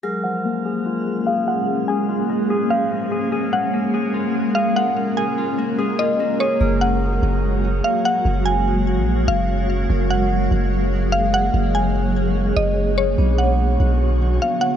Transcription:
0.03 F#3 G#3 A#3 C#4 G#4 A#4 F6
0.24 F3 F#5
0.44 A#3
0.65 G#4
0.86 F4
1.27 G#4 F5
1.47 F4 F#5
1.88 G#4 G#5
2.09 F4
2.29 A#3
2.50 G#4
2.70 F3 F5
2.91 A#3
3.11 G#4
3.32 G#4 A#4
3.53 C#4 F#5
3.73 A#3
3.94 G#4
4.14 F4
4.55 G#4 F5
4.76 F4 F#5
5.17 G#4 G#5
5.38 F4
5.58 A#3
5.78 G#4
5.99 F4 D#5
6.20 A#3
6.40 G#4 C#5
6.61 F#1 F#3 G#3 A#3 F#4 G#4 C#5 F6
6.81 F#5
7.23 F#1
7.84 F5
8.05 F#5
8.25 F#1
8.46 G#5
8.97 A#1
9.28 F#1 F5
9.90 F#1 G#4 A#4
10.10 F#5
10.51 F#1
11.12 F5
11.34 F#5
11.54 F#1
11.75 G#5
12.56 F#1 D#5
12.98 C#5
13.18 B1 D3 F#3 B3 D4 F#4 C#5
13.38 F#5
13.80 B1
14.42 F5
14.61 F#5

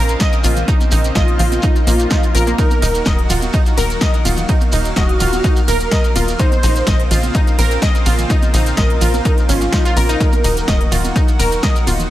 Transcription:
Already playing: A#1 C#3 A#3 C4 F4
0.09 closed hi-hat, shekere
0.20 D#5, kick, snare, closed hi-hat, shekere
0.32 closed hi-hat, shekere
0.44 A#1 F4, open hi-hat, high conga, shekere
0.56 closed hi-hat, low conga, shekere
0.68 D#4, kick, closed hi-hat, shekere
0.81 closed hi-hat, high conga, shekere
0.91 A#1 D#4, open hi-hat, shekere
1.04 closed hi-hat, shekere
1.15 A#1 F4 D#5, kick, snare, closed hi-hat, high conga, shekere
1.28 closed hi-hat
1.39 A#1 F4, open hi-hat, low conga, shekere
1.52 closed hi-hat, high conga, shekere
1.62 D#4, kick, closed hi-hat, shekere
1.76 closed hi-hat, shekere
1.87 A#1 A#3 F4, open hi-hat, high conga, shekere
1.99 closed hi-hat, shekere
2.10 D#4, kick, snare, closed hi-hat, shekere
2.23 closed hi-hat, shekere
2.35 A#1 A#4, open hi-hat, high conga, shekere
2.47 A#3, closed hi-hat, shekere
2.58 D#3 F#3 A#3 D#4 F#4 A#4, kick, closed hi-hat, ride, low conga, shekere
2.71 closed hi-hat, high conga, shekere
2.82 D#1 D#4, open hi-hat, ride, shekere
2.94 closed hi-hat, shekere
3.05 D#1 D#5, kick, snare, closed hi-hat, ride, high conga, shekere
3.19 closed hi-hat
3.30 D#1 F4, open hi-hat, ride, low conga, shekere
3.42 closed hi-hat, high conga, shekere
3.53 D#4, kick, closed hi-hat, ride, shekere
3.66 closed hi-hat, shekere
3.77 D#1 A#4, open hi-hat, ride, high conga, shekere
3.90 closed hi-hat, shekere
4.01 D#5, kick, snare, closed hi-hat, ride, shekere
4.14 closed hi-hat, shekere
4.25 D#1 F4, open hi-hat, ride, high conga, shekere
4.37 closed hi-hat, low conga, shekere
4.48 D#4 F5, kick, closed hi-hat, ride, shekere
4.61 closed hi-hat, high conga, shekere
4.72 D#1 D#4, open hi-hat, ride, shekere
4.85 closed hi-hat, shekere
4.96 D#1 F#4 D#5, kick, snare, closed hi-hat, ride, high conga, shekere
5.09 closed hi-hat
5.20 D#1 F4, open hi-hat, ride, low conga, shekere
5.33 closed hi-hat, high conga, shekere
5.44 D#4, kick, closed hi-hat, ride, shekere
5.56 closed hi-hat, shekere
5.68 D#1 A#4, open hi-hat, ride, high conga, shekere
5.80 closed hi-hat, shekere
5.91 D#5, kick, snare, closed hi-hat, ride, shekere
6.04 closed hi-hat, shekere
6.16 D#1 F4, open hi-hat, ride, high conga, shekere
6.28 closed hi-hat, shekere
6.39 C#3 C4 D#4 F4 C5, kick, closed hi-hat, ride, low conga, shekere
6.52 closed hi-hat, high conga, shekere
6.63 A#1 D#4, open hi-hat, ride, shekere
6.76 closed hi-hat, shekere
6.87 A#1 D#5, kick, snare, closed hi-hat, ride, high conga, shekere
7.00 closed hi-hat
7.11 A#1 F4, open hi-hat, ride, low conga, shekere
7.22 closed hi-hat, high conga, shekere
7.34 D#4, kick, closed hi-hat, ride, shekere
7.47 closed hi-hat, shekere
7.59 A#1 A#4, open hi-hat, ride, high conga, shekere
7.71 closed hi-hat, shekere
7.82 D#5, kick, snare, closed hi-hat, ride, shekere
7.95 closed hi-hat, shekere
8.06 A#1 F4, open hi-hat, ride, high conga, shekere
8.18 closed hi-hat, low conga, shekere
8.30 D#4, kick, closed hi-hat, ride, low conga, shekere
8.42 closed hi-hat, high conga, shekere
8.54 A#1 D#4, open hi-hat, ride, shekere
8.66 closed hi-hat, shekere
8.77 A#1 A#4 D#5, kick, snare, closed hi-hat, ride, high conga, shekere
8.90 closed hi-hat
9.01 A#1 F4, open hi-hat, ride, low conga, shekere
9.14 closed hi-hat, high conga, shekere
9.25 D#4, kick, closed hi-hat, ride, shekere
9.38 closed hi-hat, shekere
9.49 G#1 C#4 F4, open hi-hat, ride, high conga, shekere
9.61 snare, closed hi-hat, shekere
9.72 D#4, kick, snare, closed hi-hat, ride, shekere
9.85 F4, closed hi-hat, shekere
9.97 A#1 A#4, open hi-hat, ride, high conga, shekere
10.09 D#4, closed hi-hat, shekere
10.20 D#3 F#3 D#4 F#4 A#4, kick, closed hi-hat, ride, low conga, shekere
10.32 closed hi-hat, high conga, shekere
10.44 D#1 D#4, open hi-hat, ride, shekere
10.57 closed hi-hat, shekere
10.68 D#1 D#5, kick, snare, closed hi-hat, ride, high conga, shekere
10.81 closed hi-hat
10.92 D#1 F4, open hi-hat, ride, low conga, shekere
11.04 closed hi-hat, high conga, shekere
11.16 D#4, kick, closed hi-hat, ride, shekere
11.28 closed hi-hat, shekere
11.39 D#1 A#4, open hi-hat, ride, high conga, shekere
11.52 closed hi-hat, shekere
11.63 D#5, kick, snare, closed hi-hat, ride, shekere
11.76 closed hi-hat, shekere
11.87 D#1 F4, open hi-hat, ride, high conga, shekere
12.00 closed hi-hat, low conga, shekere

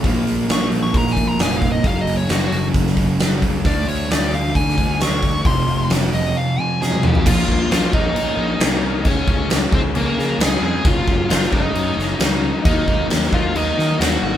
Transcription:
0.02 A#1 A#2 F3 A#3, kick, open hi-hat
0.07 A#3
0.27 A#1, open hi-hat
0.49 A#1 C#6, snare, open hi-hat
0.72 A#1, open hi-hat
0.83 C#6
0.94 A#1 A#5, kick, open hi-hat
1.07 snare
1.12 A#3 G#5
1.17 A#1 A#2 F3, kick, open hi-hat
1.28 A#5
1.39 F1 A#2 F3 A#3 G#5, snare, open hi-hat
1.57 F5
1.62 kick, open hi-hat
1.72 D#5
1.83 F#1 F#2 C#3 F#3, kick, open hi-hat
1.87 F#3 F5
2.01 D#5
2.06 F#1, open hi-hat
2.17 C#5
2.29 F#1 F#4, snare, open hi-hat
2.45 F#4
2.51 F#1, open hi-hat
2.74 F#1, kick, open hi-hat
2.86 snare
2.97 F#1 F#2 C#3 F#3, kick, open hi-hat
3.18 F#1 F#2 C#3, snare, open hi-hat
3.22 F#3
3.42 C#2, kick, open hi-hat
3.64 D2 D3 A3 D4 D5, kick, open hi-hat
3.87 D2 C#5, open hi-hat
4.08 D2 D5, snare, open hi-hat
4.31 D2 F5, open hi-hat
4.55 D2 G#5, kick, open hi-hat
4.69 snare
4.77 D2 D3 A3 D4, kick, open hi-hat
5.00 D2 D3 A3 D4 C#6, snare, open hi-hat
5.22 kick, open hi-hat
5.44 F1 F2 C3 F3 C6, kick, open hi-hat
5.67 F1, open hi-hat
5.90 F1, snare, open hi-hat
6.13 F1 D#5, open hi-hat
6.37 F5
6.57 F2 C3 F3 G#5
6.80 F2 C3 F3 G#4 G#5, snare
6.92 high tom
7.03 G#4 F5 G#5, mid tom
7.15 floor tom
7.25 A#1 A#2 F3 A#3 C#4 F4 F5, kick, crash
7.47 A#1 F3 A#3 C#4, kick
7.70 A#1 A#2 F3 A#3 C#4 F4 F5, snare, crash
7.93 A#1 A#2 F3 A#3 C#4 D#4 D#5, kick
8.15 A#2 F3 A#3 C#4, crash
8.37 A#1 F3 A#3 C#4
8.60 C2 A#2 F3 A#3 C#4, snare, crash
8.83 F3 A#3 C#4
9.05 C#2 C#3 F3 G#3 C#4 C#5, kick, crash
9.27 C#2 F3 G#3 C#4, kick
9.48 C#2 C#3 F3 G#3, snare, crash
9.53 C#4
9.72 C#2 C#3 F3 G#3 C4 C#4 C5, kick
9.94 C#2 C#3 F3 G#3 A#3 C#4 A#4, crash
10.16 C#3 F3 G#3 C#4, snare
10.39 C#2 C#3 F3 G#3 C#4 G#4, snare, crash
10.43 G#5
10.61 F2 F3 G#3 C#4 G#4 G#5
10.83 F#1 F#2 C#3 F#3 A3 C#4 F4 F5, kick, crash
11.05 F#1 F#3 A3 C#4, kick
11.28 F#1 C#3 F#3 A3 C#4 F4 F5, snare, crash
11.43 snare
11.51 F#1 F#2 C#3 F#3 A3 C#4 D#4 D#5, kick
11.73 F#2 C#3 F#3 A3 C#4, crash
11.97 F#1 F#3 A3 C#4, snare
12.18 C#2 F#2 C#3 F#3 A3 C#4, snare, crash
12.41 F#3 A3 C#4
12.63 D#2 D#3 F#3 A#3 D#4 D#5, kick, crash
12.86 D#2 F#3 A#3 D#4, kick
13.08 D#2 D#3 F#3 A#3 D#4, snare, crash
13.23 snare
13.31 D#2 D#3 F#3 A#3 D#4 F4 F5, kick
13.54 D#2 D#3 F#3 A#3 D#4 D#5, crash
13.76 D#3 F#3 A#3 D#4, snare
13.98 D#2 D#3 F#3 A#3 D#4 F#4 F#5, snare, crash
14.22 G#1 F#3 A#3 D#4 F#4 F#5

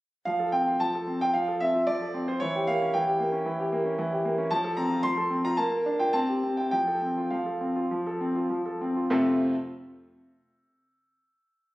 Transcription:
0.25 F3 F5
0.39 A4
0.52 C4 G5
0.68 F4
0.80 F3 A5
0.95 A4
1.07 C4
1.21 F4 G5
1.34 F3 F5
1.48 A4
1.60 C4 E5
1.74 F4
1.87 F3 D5
2.01 A4
2.14 C4
2.28 F4 C5
2.40 E3 C#5
2.55 G4
2.67 A#3 F5
2.82 C#4
2.94 E3 G5
3.07 G4
3.20 A#3
3.32 C#4
3.46 E3
3.59 G4
3.72 A#3
3.85 C#4
3.99 E3
4.12 G4
4.25 A#3
4.38 C#4
4.51 F3 A5
4.64 A4
4.77 C4 A#5
4.91 F4
5.03 F3 C6
5.17 A4
5.30 C4
5.45 F4 A#5
5.57 A#3 A5
5.72 A#4
5.86 D4
5.99 F4 G5
6.13 C4 A5
6.28 G4
6.44 C4
6.57 E4 G5
6.71 F3 G5
6.87 A4
7.02 C4
7.17 F4
7.30 F3 F5
7.46 A4
7.61 C4
7.76 F4
7.91 F3
8.06 A4
8.21 C4
8.36 F4
8.50 F3
8.65 A4
8.81 C4
8.96 F4
9.10 F2 C3 A3 C4 F4 A4

